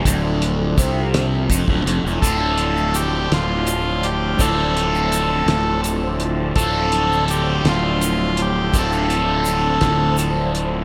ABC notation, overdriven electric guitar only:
X:1
M:6/8
L:1/16
Q:3/8=55
K:Dm
V:1 name="Overdriven electric guitar" clef=bass
D,,4 C,4 F,, D,, F,, E,, | [D,,A,,D,A,CF]12 | [D,,A,,D,A,CF]12 | [D,,A,,D,A,CF]12 |
[D,,A,,D,A,CF]12 |]